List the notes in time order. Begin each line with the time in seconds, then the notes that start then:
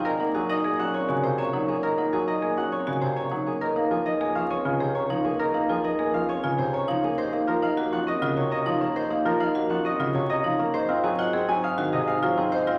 Already playing: G#4 D#5 F#5 G#5
0.05 A#2 A#4 D#5
0.20 A#3 D#4 F#5
0.34 F#3 F#4 G#4
0.49 D#4 D#5
0.64 A#3 G#4 G#5
0.79 F#3 C#4 F#5
0.94 C4 C#5 C#6
1.09 C#3 F#4 G#5
1.23 C3 G#4 C5
1.38 C#4 C#5 A#5
1.53 F#3 D#4 F#5
1.68 A#3 C#4 G#4
1.83 A#4 D#5
1.98 A#3 D#4 F#5
2.13 F#3 F#4 G#4
2.27 D#4 D#5
2.42 A#3 G#4 G#5
2.57 F#3 C#4 F#5
2.72 C4 C#5 C#6
2.87 C#3 F#4 G#5
3.01 C3 G#4 C5
3.16 C#4 C#5 A#5
3.31 F#3 D#4 F#5
3.46 A#3 C#4 G#4
3.61 C#2 A#4 D#5
3.76 A#3 D#4 F5
3.91 F3 F4 G#4
4.06 D#4 D#5
4.21 A#3 G#4 G#5
4.35 F3 C#4 F5
4.50 C4 C#5 C#6
4.65 C#3 F4 G#5
4.80 C3 G#4 C5
4.95 C#4 C#5 A#5
5.10 F3 D#4 F5
5.25 A#3 C#4 G#4
5.39 A#4 D#5
5.54 A#3 D#4 F5
5.69 F3 F4 G#4
5.84 D#4 D#5
5.99 A#3 G#4 G#5
6.14 F3 C#4 F5
6.29 C4 C#5 C#6
6.43 C#3 F4 G#5
6.58 C3 G#4 C5
6.73 C#4 C#5 A#5
6.88 F3 D#4 F5
7.03 A#3 C#4 G#4
7.18 D#2 A#4 C5 D#5
7.33 A#3 D#4 F5
7.47 F3 F4 A#4
7.62 D#4 D#5 F5
7.77 A#3 F#4 F#5
7.92 F3 C#4 F#5
8.07 C4 D#5 C#6
8.22 C#3 F4 F#5
8.37 C3 F#4 C#5
8.51 C#4 D#5 A#5
8.66 F3 D#4 F5
8.81 A#3 C#4 A#4
8.96 A#4 C5 D#5
9.11 A#3 D#4 F5
9.25 F3 F4 A#4
9.40 D#4 D#5 F5
9.55 A#3 F#4 F#5
9.70 F3 C#4 F#5
9.85 C4 D#5 C#6
9.99 C#3 F4 F#5
10.14 C3 F#4 C#5
10.29 C#4 D#5 A#5
10.44 F3 D#4 F5
10.59 A#3 C#4 A#4
10.74 G#2 C5 D#5
10.89 C4 F4 F5
11.04 F#3 F#4 G#4
11.18 F4 D#5 F#5
11.33 C4 G#4 F#5
11.48 F#3 D#4 G#5
11.63 C4 F5 D#6
11.78 D#3 F#4 F#5
11.93 C3 G#4 D#5
12.07 D#4 F5 G#5
12.23 F#3 F4 F5
12.37 C4 D#4 G#4
12.52 C5 D#5
12.67 C4 F4 F5